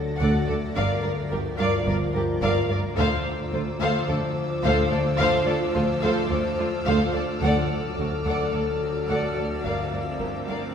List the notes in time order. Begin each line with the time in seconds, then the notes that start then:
Already playing: D2 F#3 F#4 A4 D5 A6 A#6
0.19 D2 A4 D5 F#5
0.47 D2 A4 D5
0.75 G1 G2 F3 F4 A#4 D5 F5 A#5
1.02 G2 A#4 D5
1.31 G1 G2 G4 A#4
1.57 G2 A#4 D5 F5
1.86 G1 G2 A#4 D5
2.13 G2 G4 A#4
2.41 G1 G2 A#4 D5 F5
2.68 G2 A#4 D5
2.95 D2 F3 F4 A4 C5 F5 A5 D6 E6
3.52 D2 F4 A4 C5
3.80 D2 A4 C5 F5
4.08 D2 A4 D5
4.64 D2 A4 C5 F5
4.91 D2 A4 D5
5.19 D2 A4 C5 F5 F6
5.46 D2 A4 D5
5.74 D2 F4 A4 C5
6.01 D2 A4 C5 F5
6.30 D2 A4 D5
6.58 D2 F4 A4 C5
6.86 D2 A4 C5 F5
7.13 D2 A4 D5
7.41 D2 D3 F#3 F#4 A4 D5 F#5 A5, swell
7.96 D2 F#4 A4
8.25 D2 A4 D5 F#5
8.53 D2 A4 D5
9.08 D2 A4 D5 F#5
9.36 D2 A4 D5
9.63 G1 G2 F3 F4 A#4 D5 F5 A#5
9.77 E6
9.91 G2 A#4 D5
10.19 G1 G2 G4 A#4
10.47 G2 A#4 D5 F5